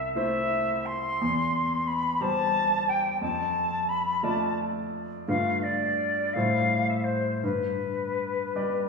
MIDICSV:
0, 0, Header, 1, 3, 480
1, 0, Start_track
1, 0, Key_signature, 0, "major"
1, 0, Tempo, 700935
1, 823, Time_signature, 6, 3, 24, 8
1, 823, Tempo, 674157
1, 3223, Tempo, 712589
1, 5143, Tempo, 743494
1, 6089, End_track
2, 0, Start_track
2, 0, Title_t, "Flute"
2, 0, Program_c, 0, 73
2, 0, Note_on_c, 0, 76, 65
2, 82, Note_off_c, 0, 76, 0
2, 90, Note_on_c, 0, 76, 74
2, 588, Note_on_c, 0, 84, 77
2, 598, Note_off_c, 0, 76, 0
2, 1299, Note_on_c, 0, 83, 71
2, 1309, Note_off_c, 0, 84, 0
2, 1543, Note_on_c, 0, 81, 89
2, 1554, Note_off_c, 0, 83, 0
2, 2023, Note_on_c, 0, 79, 70
2, 2034, Note_off_c, 0, 81, 0
2, 2248, Note_off_c, 0, 79, 0
2, 2252, Note_on_c, 0, 81, 73
2, 2736, Note_on_c, 0, 83, 72
2, 2746, Note_off_c, 0, 81, 0
2, 2981, Note_on_c, 0, 81, 70
2, 2991, Note_off_c, 0, 83, 0
2, 3222, Note_off_c, 0, 81, 0
2, 3697, Note_on_c, 0, 77, 71
2, 3934, Note_on_c, 0, 74, 64
2, 3944, Note_off_c, 0, 77, 0
2, 4409, Note_on_c, 0, 77, 73
2, 4419, Note_off_c, 0, 74, 0
2, 4788, Note_on_c, 0, 76, 57
2, 4798, Note_off_c, 0, 77, 0
2, 4885, Note_on_c, 0, 72, 54
2, 4895, Note_off_c, 0, 76, 0
2, 5136, Note_off_c, 0, 72, 0
2, 5148, Note_on_c, 0, 71, 56
2, 6089, Note_off_c, 0, 71, 0
2, 6089, End_track
3, 0, Start_track
3, 0, Title_t, "Grand piano"
3, 0, Program_c, 1, 0
3, 0, Control_c, 1, 64, 127
3, 0, Note_on_c, 1, 36, 45
3, 85, Note_off_c, 1, 36, 0
3, 105, Note_on_c, 1, 64, 38
3, 107, Note_on_c, 1, 57, 37
3, 113, Note_on_c, 1, 72, 44
3, 798, Note_off_c, 1, 64, 0
3, 799, Note_off_c, 1, 57, 0
3, 802, Note_off_c, 1, 72, 0
3, 831, Note_on_c, 1, 40, 49
3, 833, Control_c, 1, 64, 0
3, 953, Control_c, 1, 64, 127
3, 1520, Note_off_c, 1, 40, 0
3, 1538, Note_on_c, 1, 55, 40
3, 1545, Note_on_c, 1, 67, 36
3, 1549, Note_on_c, 1, 72, 42
3, 2230, Note_off_c, 1, 55, 0
3, 2233, Note_off_c, 1, 67, 0
3, 2235, Note_off_c, 1, 72, 0
3, 2255, Note_on_c, 1, 41, 44
3, 2267, Control_c, 1, 64, 0
3, 2384, Control_c, 1, 64, 127
3, 2960, Note_off_c, 1, 41, 0
3, 2979, Note_on_c, 1, 57, 40
3, 2983, Note_on_c, 1, 65, 37
3, 2986, Note_on_c, 1, 74, 44
3, 3667, Note_off_c, 1, 57, 0
3, 3670, Note_off_c, 1, 65, 0
3, 3671, Note_off_c, 1, 74, 0
3, 3701, Note_on_c, 1, 57, 33
3, 3702, Note_on_c, 1, 43, 48
3, 3704, Note_on_c, 1, 65, 36
3, 3707, Control_c, 1, 64, 0
3, 3708, Note_on_c, 1, 71, 35
3, 3824, Control_c, 1, 64, 127
3, 4396, Note_off_c, 1, 57, 0
3, 4398, Note_off_c, 1, 65, 0
3, 4400, Note_off_c, 1, 71, 0
3, 4402, Note_off_c, 1, 43, 0
3, 4426, Note_on_c, 1, 45, 48
3, 4428, Note_on_c, 1, 55, 36
3, 4431, Control_c, 1, 64, 0
3, 4431, Note_on_c, 1, 64, 37
3, 4437, Note_on_c, 1, 72, 35
3, 4546, Control_c, 1, 64, 127
3, 5121, Note_off_c, 1, 55, 0
3, 5122, Note_off_c, 1, 64, 0
3, 5125, Note_off_c, 1, 45, 0
3, 5125, Note_off_c, 1, 72, 0
3, 5150, Note_on_c, 1, 43, 40
3, 5156, Control_c, 1, 64, 0
3, 5260, Control_c, 1, 64, 127
3, 5845, Note_off_c, 1, 43, 0
3, 5872, Note_on_c, 1, 55, 31
3, 5876, Note_on_c, 1, 67, 32
3, 5879, Note_on_c, 1, 74, 37
3, 6089, Note_off_c, 1, 55, 0
3, 6089, Note_off_c, 1, 67, 0
3, 6089, Note_off_c, 1, 74, 0
3, 6089, End_track
0, 0, End_of_file